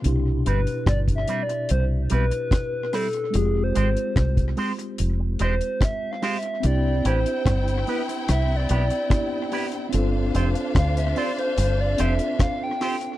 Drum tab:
HH |x-xxxxxxx-xxx-ox|x-xxxxoxx-xxx-ox|x-xxxxoxx-xxx-ox|x-xxxxoxx-xxx-ox|
SD |----r-------r-r-|----r-------r-r-|----r---r---r---|----r-------r-r-|
BD |----oo------o---|----oo------o---|----o-------o---|----o-------o---|